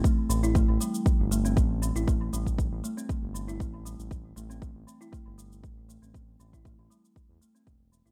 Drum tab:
SH |x-xxx-xxx-xxx-xx|x-xxx-xxx-xxx-xx|x-xxx-xxx-xxx-xx|x-xxx-xxx-xxx-xx|
BD |o---o---o---o---|o--oo---o---o---|o---o---o---o---|o--oo---o---o---|